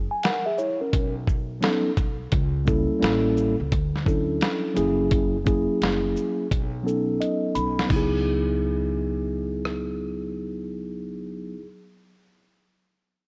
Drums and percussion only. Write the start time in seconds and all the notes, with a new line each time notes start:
0.23 snare, closed hi-hat
0.58 shaker
0.93 kick, closed hi-hat
1.27 kick, shaker
1.62 snare, closed hi-hat
1.97 kick, closed hi-hat, shaker
2.32 kick, closed hi-hat
2.67 kick, shaker
3.02 snare, closed hi-hat
3.37 shaker
3.72 kick, closed hi-hat
3.96 snare
4.06 kick, shaker
4.41 snare, closed hi-hat
4.77 closed hi-hat, shaker
5.11 kick, closed hi-hat
5.47 kick, closed hi-hat, shaker
5.82 snare, closed hi-hat
6.17 shaker
6.51 kick, closed hi-hat
6.88 shaker
7.22 closed hi-hat
7.56 closed hi-hat, shaker
7.79 snare
7.90 kick, crash
9.65 cross-stick